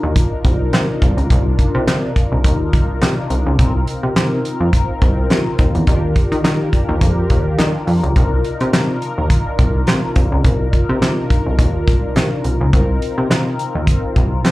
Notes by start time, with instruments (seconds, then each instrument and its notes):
Already playing: analog polysynth D4 D#4 F4 A#4
0.03 analog synth bass D#2
0.16 kick, closed hi-hat
0.45 analog synth bass C2, kick, closed hi-hat
0.73 analog synth bass C3, snare, clap, closed hi-hat
1.02 analog synth bass C2, kick, closed hi-hat
1.17 analog synth bass C#2, closed hi-hat
1.30 analog synth bass C2, kick, closed hi-hat
1.59 kick, closed hi-hat
1.75 analog synth bass C3
1.87 analog synth bass C3, snare, clap, closed hi-hat
2.16 kick, closed hi-hat
2.32 analog synth bass C2
2.44 analog synth bass D#2, kick, closed hi-hat
2.73 analog synth bass C2, kick, closed hi-hat
3.02 analog synth bass C3, snare, clap, closed hi-hat
3.30 analog synth bass C2, closed hi-hat
3.46 analog synth bass C#2
3.58 analog synth bass C2, analog polysynth C4 D#4 F4 A#4, kick, closed hi-hat
3.87 closed hi-hat
4.03 analog synth bass C3
4.16 analog synth bass C3, snare, clap, closed hi-hat
4.45 closed hi-hat
4.60 analog synth bass F2
4.73 kick, closed hi-hat
5.02 analog synth bass C2, kick, closed hi-hat
5.30 analog synth bass C3, snare, clap, closed hi-hat
5.59 analog synth bass D#2, kick, closed hi-hat
5.75 analog synth bass E2, closed hi-hat
5.86 analog synth bass D#2, analog polysynth D4 F4 G4 A#4, kick, closed hi-hat
6.16 kick, closed hi-hat
6.32 analog synth bass D#3, closed hi-hat
6.44 analog synth bass D#3, snare, clap, closed hi-hat
6.73 kick, closed hi-hat
6.89 analog synth bass D#2
7.01 analog synth bass F2, kick, closed hi-hat
7.30 analog synth bass D#2, kick, closed hi-hat
7.58 analog synth bass D#3, snare, clap, closed hi-hat
7.87 analog synth bass F2, open hi-hat
8.03 analog synth bass C#2, closed hi-hat
8.15 analog synth bass C2, analog polysynth D4 D#4 F4 A#4, kick, closed hi-hat
8.45 closed hi-hat
8.60 analog synth bass C3, closed hi-hat
8.73 analog synth bass C3, snare, clap, closed hi-hat
9.02 closed hi-hat
9.18 analog synth bass D#2
9.30 kick, closed hi-hat
9.59 analog synth bass C2, kick, closed hi-hat
9.87 analog synth bass C3, snare, clap, closed hi-hat
10.16 analog synth bass C2, kick, closed hi-hat
10.32 analog synth bass C#2
10.44 analog synth bass C2, kick, closed hi-hat
10.73 kick, closed hi-hat
10.89 analog synth bass C3
11.02 analog synth bass C3, snare, clap, closed hi-hat
11.30 kick, closed hi-hat
11.46 analog synth bass C2
11.59 analog synth bass D#2, kick, closed hi-hat
11.87 analog synth bass C2, kick, closed hi-hat
12.16 analog synth bass C3, snare, clap, closed hi-hat
12.44 analog synth bass C2, closed hi-hat
12.61 analog synth bass C#2
12.72 analog synth bass C2, analog polysynth C4 D#4 F4 A#4, kick, closed hi-hat
13.02 closed hi-hat
13.18 analog synth bass C3
13.30 analog synth bass C3, snare, clap, closed hi-hat
13.59 closed hi-hat
13.75 analog synth bass D#2
13.87 kick, closed hi-hat
14.16 analog synth bass C2, kick, closed hi-hat
14.44 analog synth bass C3, snare, clap, closed hi-hat